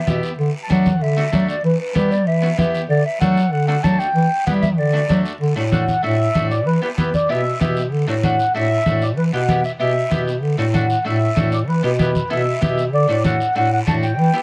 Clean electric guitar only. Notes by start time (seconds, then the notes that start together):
0.07 B3 E4 G4
0.70 A3 D4 F#4
1.17 A3 D4 F#4
1.32 A3 D4 F#4
1.95 B3 E4 G4
2.42 B3 E4 F#4
2.58 B3 E4 G4
3.21 A3 D4 F#4
3.68 A3 D4 F#4
3.83 A3 D4 F#4
4.47 B3 E4 G4
4.93 A3 D4 F#4
5.09 A3 D4 F#4
5.56 A3 D4 F#4
5.72 A3 D4 F#4
6.03 A3 D4 F#4
6.35 A3 D4 F#4
6.82 B3 E4 G4
6.97 B3 E4 G4
7.29 B3 E4 G4
7.61 B3 E4 G4
8.07 A3 D4 F#4
8.23 A3 D4 F#4
8.55 A3 D4 F#4
8.86 A3 D4 F#4
9.33 B3 E4 G4
9.49 B3 E4 G4
9.80 B3 E4 G4
10.11 B3 E4 G4
10.58 A3 D4 F#4
10.73 A3 D4 F#4
11.05 A3 D4 F#4
11.36 A3 D4 F#4
11.83 B3 E4 G4
11.99 B3 E4 G4
12.30 B3 E4 A4
12.61 B3 E4 G4
13.08 A3 D4 F#4
13.24 A3 D4 F#4
13.56 A3 D4 F#4
13.87 A3 D4 F#4
14.34 B3 E4 G4